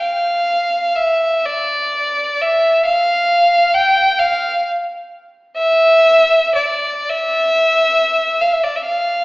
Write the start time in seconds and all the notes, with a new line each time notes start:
0.00 F5
0.96 E5
1.45 D5
2.41 E5
2.86 F5
3.74 G5
4.19 F5
5.57 E5
6.55 D5
7.10 E5
8.41 F5
8.53 E5
8.64 D5
8.76 E5
8.87 F5